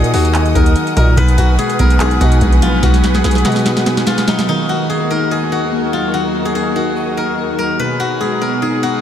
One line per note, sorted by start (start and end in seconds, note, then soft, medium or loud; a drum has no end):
0.00 0.13 A#2 loud
0.00 0.55 D#3 loud
0.00 0.35 F#3 medium
0.00 0.76 A#3 loud
0.00 0.14 D#4 medium
0.00 0.57 D#4 loud
0.00 0.13 F#4 medium
0.00 1.58 G#4 medium
0.00 0.55 A#4 medium
0.00 1.14 A#4 medium
0.00 0.35 D#5 medium
0.00 1.14 D#5 medium
0.00 1.13 F#5 medium
0.00 4.44 D#6 medium
0.04 closed hi-hat medium
0.14 0.54 D#2 loud
0.14 0.54 D#4 medium
0.14 1.37 F#4 medium
0.14 open hi-hat medium
0.25 closed hi-hat medium
0.35 1.17 D#5 medium
0.35 clap loud
0.35 closed hi-hat medium
0.46 closed hi-hat soft
0.55 0.75 D#2 loud
0.55 1.17 D#4 medium
0.55 0.96 A#4 medium
0.55 kick loud
0.55 closed hi-hat medium
0.66 closed hi-hat medium
0.76 1.17 A#3 medium
0.76 closed hi-hat medium
0.87 closed hi-hat soft
0.96 1.16 A#2 loud
0.96 1.17 F#3 medium
0.96 1.24 A#4 medium
0.96 kick medium
0.96 closed hi-hat medium
1.17 1.37 B1 loud
1.17 2.21 B2 loud
1.17 4.45 B4 medium
1.17 1.85 B4 loud
1.17 4.45 F#5 medium
1.17 4.45 G#5 medium
1.17 kick loud
1.17 closed hi-hat medium
1.28 closed hi-hat medium
1.38 1.58 B1 loud
1.38 2.20 F#4 medium
1.38 kick medium
1.38 closed hi-hat medium
1.59 2.40 G#3 medium
1.59 2.00 G#4 medium
1.59 closed hi-hat medium
1.70 closed hi-hat medium
1.79 2.19 B1 loud
1.79 2.19 B3 medium
1.79 3.92 A#4 medium
1.79 kick medium
1.79 closed hi-hat medium
1.90 closed hi-hat medium
2.00 3.04 D#4 loud
2.00 3.14 G#4 medium
2.00 clap loud
2.00 closed hi-hat medium
2.11 closed hi-hat soft
2.21 2.41 B2 loud
2.21 3.24 B3 medium
2.21 2.68 F#4 medium
2.21 kick loud
2.21 closed hi-hat medium
2.32 closed hi-hat medium
2.41 2.81 A#1 loud
2.41 3.23 G#3 medium
2.41 kick medium
2.41 closed hi-hat medium
2.52 closed hi-hat soft
2.62 3.66 F#3 medium
2.62 2.89 F4 medium
2.62 closed hi-hat medium
2.83 3.23 B1 loud
2.83 3.86 B2 loud
2.83 3.45 F#4 loud
2.83 kick loud
2.83 snare medium
2.83 closed hi-hat medium
2.94 snare medium
2.94 closed hi-hat medium
3.04 snare medium
3.04 closed hi-hat medium
3.14 3.24 G#4 medium
3.14 snare medium
3.24 3.44 B1 loud
3.24 4.06 G#3 loud
3.24 4.89 G#4 medium
3.24 snare medium
3.24 closed hi-hat medium
3.31 closed hi-hat medium
3.35 snare medium
3.35 closed hi-hat medium
3.45 4.04 B2 loud
3.45 3.85 B3 medium
3.45 4.13 F#4 medium
3.45 snare medium
3.45 closed hi-hat medium
3.45 open hi-hat medium
3.52 closed hi-hat medium
3.56 snare medium
3.56 closed hi-hat soft
3.66 4.48 D#4 loud
3.66 snare medium
3.66 closed hi-hat medium
3.77 snare medium
3.77 closed hi-hat soft
3.86 4.48 B3 medium
3.86 snare loud
3.86 closed hi-hat medium
3.97 snare medium
3.97 closed hi-hat medium
4.07 4.48 G#3 medium
4.07 4.75 F4 medium
4.07 snare loud
4.07 closed hi-hat medium
4.18 snare medium
4.18 closed hi-hat medium
4.28 4.48 F#3 medium
4.28 4.48 D#4 medium
4.28 snare loud
4.39 snare loud
4.48 7.76 D#2 medium
4.48 7.76 D#3 medium
4.48 5.52 D#3 loud
4.48 7.19 D#4 medium
4.48 7.76 F#4 medium
4.48 7.76 A#4 medium
4.69 5.52 F#4 medium
4.90 5.71 A#3 medium
4.90 5.31 G#4 medium
5.10 5.50 D#4 medium
5.10 7.17 A#4 medium
5.31 6.45 G#4 medium
5.31 6.35 D#5 medium
5.52 6.55 D#4 medium
5.52 5.99 F#4 medium
5.72 6.54 A#3 medium
5.93 6.97 F#3 medium
5.93 6.20 F4 medium
6.14 7.17 D#3 medium
6.14 6.75 F#4 medium
6.45 6.55 G#4 medium
6.55 7.36 A#3 medium
6.55 8.20 G#4 medium
6.76 7.16 D#4 medium
6.76 7.99 F#4 medium
6.96 7.79 D#5 medium
7.17 7.79 D#4 medium
7.17 7.58 A#4 medium
7.38 7.79 A#3 medium
7.58 7.79 F#3 medium
7.58 7.86 A#4 medium
7.79 8.83 B2 loud
7.79 9.01 B2 medium
7.79 9.01 F#3 medium
7.79 9.01 D#4 medium
7.79 9.01 G#4 medium
7.79 8.47 B4 medium
8.00 8.83 F#4 medium
8.21 9.01 G#3 medium
8.21 8.62 G#4 medium
8.41 8.81 B3 medium
8.41 9.01 A#4 medium
8.62 9.01 D#4 medium
8.62 9.01 G#4 medium
8.83 9.01 B3 medium
8.83 9.01 F#4 medium